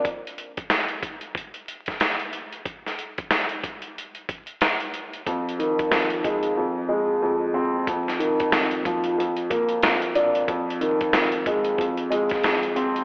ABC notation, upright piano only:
X:1
M:4/4
L:1/8
Q:"Swing 16ths" 1/4=92
K:Fdor
V:1 name="Upright piano" clef=bass
z8 | z8 | F,, E, F,, A, F,, A, F,, C | F,, E, F,, F, F,, B, F,, D |
F,, E, F,, A, F,, A, F,, C |]